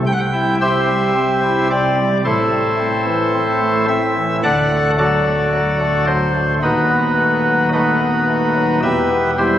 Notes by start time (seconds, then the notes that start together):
0.06 C2 C3 G5
0.13 F#5
0.19 G5
0.33 E4
0.61 C4 G4 C5 E5
0.89 G3
1.15 C4
1.43 E4
1.70 C4 D5
1.98 G3
2.25 A1 A2 E4 A4 C5
2.51 A3
2.79 C4
3.06 E3
3.34 C4
3.60 A3
3.88 C4 E5
4.16 E3
4.43 D1 D2 A4 D5 F#5
4.70 A3
4.98 F#3 F#4 A4 D5
5.26 A3
5.52 F#3
5.80 A3
6.07 F#3 C5
6.35 A3
6.62 D#1 D#2 D#4 F#4 B4
6.89 B3
7.17 A3
7.44 F#3
7.73 A3 D#4 F#4 B4
8.00 B3
8.28 A3
8.55 F#3
8.83 E1 E2 G4 B4 E5
9.11 B3
9.38 G3 E4 G4 C5